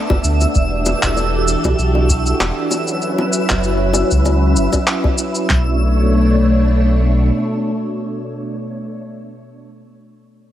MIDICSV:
0, 0, Header, 1, 5, 480
1, 0, Start_track
1, 0, Key_signature, 2, "minor"
1, 0, Tempo, 618557
1, 424, Time_signature, 4, 2, 24, 8
1, 8164, End_track
2, 0, Start_track
2, 0, Title_t, "Synth texture"
2, 0, Program_c, 0, 99
2, 0, Note_on_c, 0, 76, 82
2, 0, Note_on_c, 0, 88, 85
2, 4271, Note_off_c, 0, 76, 0
2, 4272, Note_off_c, 0, 88, 0
2, 8164, End_track
3, 0, Start_track
3, 0, Title_t, "String machine"
3, 0, Program_c, 1, 50
3, 0, Note_on_c, 1, 57, 72
3, 0, Note_on_c, 1, 59, 67
3, 0, Note_on_c, 1, 62, 82
3, 387, Note_off_c, 1, 59, 0
3, 390, Note_off_c, 1, 57, 0
3, 421, Note_on_c, 1, 66, 68
3, 421, Note_on_c, 1, 69, 83
3, 425, Note_on_c, 1, 52, 76
3, 425, Note_on_c, 1, 67, 71
3, 2069, Note_off_c, 1, 62, 0
3, 2085, Note_off_c, 1, 66, 0
3, 2085, Note_off_c, 1, 69, 0
3, 2087, Note_off_c, 1, 67, 0
3, 2088, Note_off_c, 1, 52, 0
3, 2102, Note_on_c, 1, 61, 65
3, 2103, Note_on_c, 1, 64, 66
3, 2105, Note_on_c, 1, 54, 76
3, 2105, Note_on_c, 1, 71, 77
3, 4241, Note_off_c, 1, 61, 0
3, 4242, Note_off_c, 1, 64, 0
3, 4242, Note_off_c, 1, 71, 0
3, 4243, Note_off_c, 1, 54, 0
3, 4259, Note_on_c, 1, 62, 68
3, 4261, Note_on_c, 1, 47, 72
3, 4262, Note_on_c, 1, 57, 70
3, 4263, Note_on_c, 1, 73, 82
3, 6771, Note_off_c, 1, 62, 0
3, 6772, Note_off_c, 1, 47, 0
3, 6772, Note_off_c, 1, 57, 0
3, 6773, Note_off_c, 1, 73, 0
3, 8164, End_track
4, 0, Start_track
4, 0, Title_t, "Analog synth bass"
4, 0, Program_c, 2, 38
4, 78, Note_on_c, 2, 30, 77
4, 152, Note_off_c, 2, 30, 0
4, 184, Note_on_c, 2, 38, 87
4, 356, Note_off_c, 2, 38, 0
4, 430, Note_on_c, 2, 28, 94
4, 733, Note_off_c, 2, 28, 0
4, 797, Note_on_c, 2, 28, 90
4, 1212, Note_off_c, 2, 28, 0
4, 1276, Note_on_c, 2, 35, 101
4, 1351, Note_off_c, 2, 35, 0
4, 1385, Note_on_c, 2, 35, 90
4, 1810, Note_off_c, 2, 35, 0
4, 1863, Note_on_c, 2, 28, 83
4, 1953, Note_off_c, 2, 28, 0
4, 2715, Note_on_c, 2, 30, 81
4, 3131, Note_off_c, 2, 30, 0
4, 3195, Note_on_c, 2, 37, 96
4, 3540, Note_on_c, 2, 30, 77
4, 3552, Note_off_c, 2, 37, 0
4, 3631, Note_off_c, 2, 30, 0
4, 4265, Note_on_c, 2, 35, 87
4, 5673, Note_off_c, 2, 35, 0
4, 8164, End_track
5, 0, Start_track
5, 0, Title_t, "Drums"
5, 77, Note_on_c, 9, 60, 76
5, 78, Note_on_c, 9, 36, 96
5, 155, Note_off_c, 9, 36, 0
5, 155, Note_off_c, 9, 60, 0
5, 187, Note_on_c, 9, 69, 65
5, 264, Note_off_c, 9, 69, 0
5, 316, Note_on_c, 9, 69, 42
5, 322, Note_on_c, 9, 60, 45
5, 394, Note_off_c, 9, 69, 0
5, 400, Note_off_c, 9, 60, 0
5, 425, Note_on_c, 9, 69, 28
5, 430, Note_on_c, 9, 36, 98
5, 502, Note_off_c, 9, 69, 0
5, 507, Note_off_c, 9, 36, 0
5, 664, Note_on_c, 9, 69, 66
5, 669, Note_on_c, 9, 60, 64
5, 742, Note_off_c, 9, 69, 0
5, 747, Note_off_c, 9, 60, 0
5, 797, Note_on_c, 9, 39, 71
5, 797, Note_on_c, 9, 69, 38
5, 798, Note_on_c, 9, 36, 52
5, 875, Note_off_c, 9, 36, 0
5, 875, Note_off_c, 9, 39, 0
5, 875, Note_off_c, 9, 69, 0
5, 906, Note_on_c, 9, 60, 40
5, 908, Note_on_c, 9, 69, 27
5, 984, Note_off_c, 9, 60, 0
5, 986, Note_off_c, 9, 69, 0
5, 1147, Note_on_c, 9, 69, 68
5, 1224, Note_off_c, 9, 69, 0
5, 1274, Note_on_c, 9, 69, 37
5, 1277, Note_on_c, 9, 36, 90
5, 1280, Note_on_c, 9, 60, 66
5, 1352, Note_off_c, 9, 69, 0
5, 1354, Note_off_c, 9, 36, 0
5, 1358, Note_off_c, 9, 60, 0
5, 1388, Note_on_c, 9, 69, 27
5, 1466, Note_off_c, 9, 69, 0
5, 1513, Note_on_c, 9, 60, 47
5, 1590, Note_off_c, 9, 60, 0
5, 1626, Note_on_c, 9, 69, 68
5, 1628, Note_on_c, 9, 36, 94
5, 1704, Note_off_c, 9, 69, 0
5, 1705, Note_off_c, 9, 36, 0
5, 1756, Note_on_c, 9, 69, 37
5, 1834, Note_off_c, 9, 69, 0
5, 1863, Note_on_c, 9, 60, 66
5, 1868, Note_on_c, 9, 39, 70
5, 1868, Note_on_c, 9, 69, 29
5, 1941, Note_off_c, 9, 60, 0
5, 1946, Note_off_c, 9, 39, 0
5, 1946, Note_off_c, 9, 69, 0
5, 2102, Note_on_c, 9, 60, 46
5, 2103, Note_on_c, 9, 69, 62
5, 2180, Note_off_c, 9, 60, 0
5, 2181, Note_off_c, 9, 69, 0
5, 2231, Note_on_c, 9, 69, 37
5, 2308, Note_off_c, 9, 69, 0
5, 2343, Note_on_c, 9, 69, 28
5, 2420, Note_off_c, 9, 69, 0
5, 2471, Note_on_c, 9, 60, 61
5, 2549, Note_off_c, 9, 60, 0
5, 2582, Note_on_c, 9, 69, 72
5, 2660, Note_off_c, 9, 69, 0
5, 2711, Note_on_c, 9, 39, 68
5, 2711, Note_on_c, 9, 60, 43
5, 2711, Note_on_c, 9, 69, 36
5, 2716, Note_on_c, 9, 36, 49
5, 2788, Note_off_c, 9, 60, 0
5, 2789, Note_off_c, 9, 39, 0
5, 2789, Note_off_c, 9, 69, 0
5, 2793, Note_off_c, 9, 36, 0
5, 2821, Note_on_c, 9, 69, 27
5, 2898, Note_off_c, 9, 69, 0
5, 3053, Note_on_c, 9, 60, 68
5, 3059, Note_on_c, 9, 69, 68
5, 3131, Note_off_c, 9, 60, 0
5, 3137, Note_off_c, 9, 69, 0
5, 3188, Note_on_c, 9, 69, 39
5, 3195, Note_on_c, 9, 36, 81
5, 3266, Note_off_c, 9, 69, 0
5, 3273, Note_off_c, 9, 36, 0
5, 3300, Note_on_c, 9, 69, 25
5, 3301, Note_on_c, 9, 60, 48
5, 3378, Note_off_c, 9, 69, 0
5, 3379, Note_off_c, 9, 60, 0
5, 3541, Note_on_c, 9, 69, 62
5, 3618, Note_off_c, 9, 69, 0
5, 3668, Note_on_c, 9, 60, 58
5, 3669, Note_on_c, 9, 69, 37
5, 3674, Note_on_c, 9, 36, 52
5, 3745, Note_off_c, 9, 60, 0
5, 3746, Note_off_c, 9, 69, 0
5, 3752, Note_off_c, 9, 36, 0
5, 3782, Note_on_c, 9, 39, 73
5, 3782, Note_on_c, 9, 69, 30
5, 3859, Note_off_c, 9, 39, 0
5, 3859, Note_off_c, 9, 69, 0
5, 3912, Note_on_c, 9, 60, 46
5, 3914, Note_on_c, 9, 36, 88
5, 3989, Note_off_c, 9, 60, 0
5, 3992, Note_off_c, 9, 36, 0
5, 4019, Note_on_c, 9, 69, 66
5, 4097, Note_off_c, 9, 69, 0
5, 4150, Note_on_c, 9, 69, 39
5, 4228, Note_off_c, 9, 69, 0
5, 4265, Note_on_c, 9, 36, 87
5, 4266, Note_on_c, 9, 38, 97
5, 4266, Note_on_c, 9, 39, 78
5, 4343, Note_off_c, 9, 36, 0
5, 4344, Note_off_c, 9, 38, 0
5, 4344, Note_off_c, 9, 39, 0
5, 8164, End_track
0, 0, End_of_file